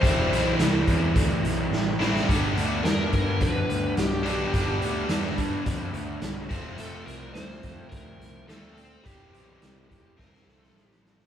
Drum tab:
HH |x-x-x-x-x-x-----|x-x-x-x-x-x-x-x-|x-x-x-x-x-x-x-x-|x-x-x-x-x-x-x-x-|
SD |----o-------o-oo|----o-------o---|----oo------o---|----o-------o---|
BD |o-----o-o-------|o-----o-o-------|o-----o-o-----o-|------o-o-------|

HH |x-x-x-x---------|
SD |----o---oooooooo|
BD |o-----o-o-------|